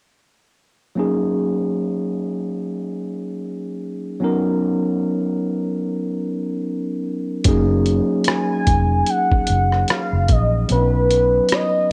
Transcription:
0.95 tine electric piano F#3 A#3 C#4 D#4
0.99 tine electric piano G#4
4.20 tine electric piano F#3 B3 C#4 D#4
4.24 tine electric piano A#4
7.44 fingered electric bass F#1, tine electric piano F#3 A#3 C#4 D#4 G#4, kick, closed hi-hat
7.86 closed hi-hat
8.24 soft synth lead G#5, cross-stick, closed hi-hat
8.67 fingered electric bass F1, kick, closed hi-hat
9.06 soft synth lead F#5, closed hi-hat
9.32 kick
9.47 fingered electric bass F#1, closed hi-hat
9.72 cross-stick
9.88 soft synth lead F5, cross-stick, closed hi-hat
10.13 fingered electric bass F#1
10.29 fingered electric bass A#1, soft synth lead D#5, kick, closed hi-hat
10.68 fingered electric bass B1, tine electric piano F#3 B3 C#4 D4 B4, closed hi-hat
10.72 soft synth lead B4
10.77 tine electric piano D#4
11.10 closed hi-hat
11.48 cross-stick, closed hi-hat
11.54 soft synth lead D#5

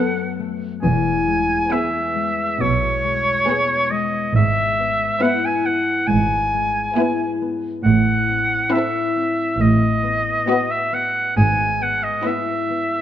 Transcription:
Already playing: harp F#2 F#3 A3 B3, viola section B3, violin section A4 B4, oboe F#5
0.39 harp A3
0.83 double bass section E1, harp E2, cello section E2, oboe G#5
1.27 harp G#3
1.70 viola section B3, harp B3, violin section G#4 B4, oboe E5
2.16 harp G#3
2.60 double bass section B1, harp B2, cello section B2, oboe C#5
3.04 harp G#3
3.47 harp B3, viola section B3, violin section G#4 B4
3.91 harp G#3, oboe D#5
4.35 double bass section G#1, harp G#2, cello section G#2, oboe E5
4.79 harp B3
5.21 viola section B3, harp E4, violin section E4 B4, oboe F#5
5.45 oboe G#5
5.66 harp B3, oboe F#5
6.07 double bass section G#1, harp G#2, cello section G#2, oboe G#5
6.54 harp G#3
6.96 viola section B3, violin section E4 B4, harp E4
7.42 harp B3
7.84 double bass section A1, cello section A2, harp A2, oboe F#5
8.29 harp C4
8.71 viola section C4, violin section E4 A4, harp E4, oboe E5
9.16 harp C4
9.60 double bass section A1, cello section A2, harp A2, oboe D#5
10.03 harp B3
10.47 viola section B3, harp F#4, violin section F#4 B4
10.71 oboe E5
10.92 harp B3, oboe F#5
11.37 double bass section G#1, harp G#2, cello section G#2, oboe G#5
11.81 harp B3, oboe F#5
12.03 oboe D#5
12.24 viola section B3, harp E4, violin section E4 B4, oboe E5
12.70 harp B3

